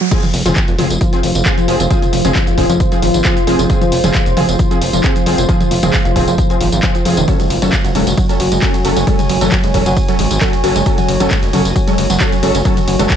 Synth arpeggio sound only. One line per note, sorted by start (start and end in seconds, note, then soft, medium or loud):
0.01 0.11 F#3 loud
0.12 0.19 F3 medium
0.23 0.30 F3 medium
0.46 0.55 F3 loud
0.68 0.75 F3 medium
0.79 0.86 F3 medium
1.01 1.12 F3 loud
1.23 1.31 F3 medium
1.35 1.42 F3 medium
1.57 1.67 F3 loud
1.80 1.86 F3 medium
1.90 1.98 F3 medium
2.13 2.24 F3 loud
2.35 2.42 F3 medium
2.47 2.54 F3 medium
2.69 2.79 F3 loud
2.92 2.98 F3 medium
3.02 3.10 F3 medium
3.25 3.36 F3 loud
3.47 3.54 F3 medium
3.59 3.66 F3 medium
3.81 3.91 F3 loud
4.04 4.10 F3 medium
4.14 4.22 F3 medium
4.37 4.48 F3 loud
4.59 4.66 F3 medium
4.71 4.77 F3 medium
4.93 5.03 F3 loud
5.16 5.22 F3 medium
5.26 5.34 F3 medium
5.49 5.60 F3 loud
5.71 5.78 F3 medium
5.83 5.89 F3 medium
6.05 6.15 F3 loud
6.28 6.34 F3 medium
6.38 6.46 F3 medium
6.61 6.68 F3 medium
6.83 6.87 F3 medium
6.95 7.01 F3 medium
7.06 7.16 F3 medium
7.17 7.24 D#3 loud
7.28 7.35 F#3 medium
7.40 7.46 G#3 medium
7.62 7.72 F#3 loud
7.84 7.91 F#3 medium
7.95 8.02 G#3 medium
8.18 8.28 F#3 loud
8.40 8.47 F#3 medium
8.52 8.58 G#3 medium
8.74 8.84 F#3 loud
8.96 9.03 F#3 medium
9.07 9.14 G#3 medium
9.30 9.40 F#3 loud
9.52 9.59 F#3 medium
9.64 9.70 G#3 medium
9.86 9.96 F#3 loud
10.08 10.15 F#3 medium
10.19 10.26 G#3 medium
10.41 10.52 F#3 loud
10.64 10.71 F#3 medium
10.76 10.82 G#3 medium
10.98 11.08 F#3 loud
11.20 11.27 F#3 medium
11.31 11.38 G#3 medium
11.53 11.64 F#3 loud
11.76 11.83 F#3 medium
11.87 11.94 G#3 medium
12.10 12.20 F#3 loud
12.32 12.39 F#3 medium
12.43 12.50 G#3 medium
12.65 12.76 F#3 loud
12.88 12.95 F#3 medium
12.99 13.06 G#3 medium